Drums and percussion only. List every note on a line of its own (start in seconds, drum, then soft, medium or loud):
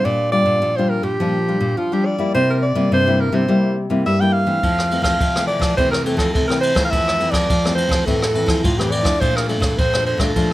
4.63 kick medium
4.63 ride soft
4.79 cross-stick medium
4.91 ride soft
5.04 kick medium
5.04 cross-stick medium
5.04 ride soft
5.21 kick medium
5.21 ride soft
5.36 cross-stick medium
5.48 ride soft
5.61 kick medium
5.61 cross-stick medium
5.61 ride soft
5.78 kick medium
5.78 ride soft
5.93 cross-stick medium
6.06 ride soft
6.19 kick medium
6.19 cross-stick medium
6.19 ride soft
6.35 kick medium
6.35 ride soft
6.50 cross-stick medium
6.63 ride medium
6.76 kick medium
6.76 cross-stick medium
6.76 ride medium
6.92 kick medium
6.92 ride soft
7.08 cross-stick medium
7.20 ride soft
7.33 kick medium
7.33 cross-stick medium
7.33 ride soft
7.50 kick medium
7.50 ride soft
7.65 cross-stick medium
7.78 ride medium
7.91 kick medium
7.91 cross-stick medium
7.91 ride soft
8.07 kick medium
8.07 ride soft
8.22 cross-stick medium
8.35 ride soft
8.48 kick medium
8.48 cross-stick medium
8.48 ride soft
8.64 kick medium
8.64 ride medium
8.79 cross-stick medium
8.92 ride medium
9.05 kick medium
9.05 cross-stick medium
9.05 ride soft
9.21 kick medium
9.21 ride soft
9.37 cross-stick medium
9.49 ride soft
9.62 kick medium
9.62 cross-stick medium
9.62 ride soft
9.78 kick medium
9.78 ride soft
9.93 cross-stick medium
10.06 ride soft
10.19 kick medium
10.19 cross-stick medium
10.19 ride soft
10.36 kick medium
10.36 ride soft